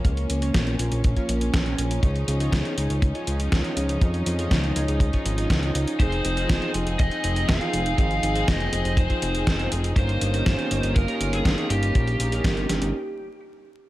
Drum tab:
HH |xxxxxxxxxxxxxxxx|xxxxxxxxxxxxxxxx|xxxxxxxxxxxxxxxx|xxxxxxxxxxxxxxxx|
SD |----o-------o---|----o-------o---|----o-------o---|----o-------o---|
BD |o---o---oo--o---|o---o---o---o---|o---o---oo--o---|o---o---o---o---|

HH |xxxxxxxxxxxxxxxx|xxxxxxxxxxxxxxxx|xxxxxxxx--------|
SD |----o-------o---|----o-------o---|----o-o---------|
BD |o---o---oo--o---|o---o---o---o---|o---o-----------|